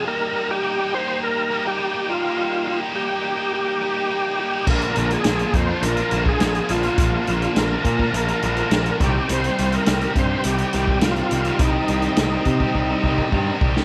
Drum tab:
CC |----------------|----------------|x---------------|----------------|
HH |----------------|----------------|-xxxxxx-xxx-xxxx|x-xxx-x-xxxxxxx-|
SD |----------------|----------------|----o-------o-o-|----o-------o-o-|
BD |----------------|----------------|o-----o----o----|o-----oo------o-|

CC |----------------|----------------|
HH |xxxxxxx-xxx-xxxx|x-xxx-x---------|
SD |----o-------o---|----o----------o|
BD |------o----o----|o-----ooo-ooo-o-|